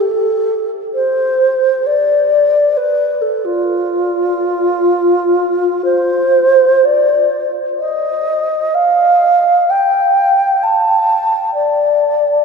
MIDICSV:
0, 0, Header, 1, 2, 480
1, 0, Start_track
1, 0, Tempo, 500000
1, 11949, End_track
2, 0, Start_track
2, 0, Title_t, "Alto flute"
2, 0, Program_c, 0, 73
2, 0, Note_on_c, 0, 69, 95
2, 654, Note_off_c, 0, 69, 0
2, 900, Note_on_c, 0, 72, 99
2, 1786, Note_on_c, 0, 74, 101
2, 1801, Note_off_c, 0, 72, 0
2, 2655, Note_on_c, 0, 71, 99
2, 2670, Note_off_c, 0, 74, 0
2, 3083, Note_on_c, 0, 69, 85
2, 3097, Note_off_c, 0, 71, 0
2, 3307, Note_on_c, 0, 65, 96
2, 3322, Note_off_c, 0, 69, 0
2, 5603, Note_off_c, 0, 65, 0
2, 5609, Note_on_c, 0, 72, 104
2, 6572, Note_on_c, 0, 74, 103
2, 6587, Note_off_c, 0, 72, 0
2, 7222, Note_off_c, 0, 74, 0
2, 7474, Note_on_c, 0, 75, 99
2, 8392, Note_on_c, 0, 77, 110
2, 8406, Note_off_c, 0, 75, 0
2, 9308, Note_on_c, 0, 79, 99
2, 9323, Note_off_c, 0, 77, 0
2, 10204, Note_on_c, 0, 81, 100
2, 10218, Note_off_c, 0, 79, 0
2, 11071, Note_off_c, 0, 81, 0
2, 11077, Note_on_c, 0, 74, 102
2, 11949, Note_off_c, 0, 74, 0
2, 11949, End_track
0, 0, End_of_file